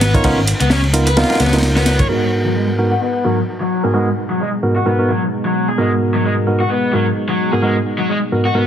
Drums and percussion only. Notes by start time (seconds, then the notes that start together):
0.01 snare, closed hi-hat, ride
0.14 kick, closed hi-hat
0.24 kick, closed hi-hat, ride
0.47 closed hi-hat, ride
0.60 closed hi-hat, ride
0.70 snare, closed hi-hat, ride
0.84 ride
0.94 closed hi-hat, ride
1.07 closed hi-hat, ride
1.17 snare, closed hi-hat, ride
1.23 snare, ride
1.30 snare, ride
1.35 snare, ride
1.40 snare, closed hi-hat, ride
1.46 snare, ride
1.53 snare, closed hi-hat, ride
1.57 snare, ride
1.62 snare, closed hi-hat, ride
1.76 snare, ride
1.86 snare, closed hi-hat, ride
1.99 kick, closed hi-hat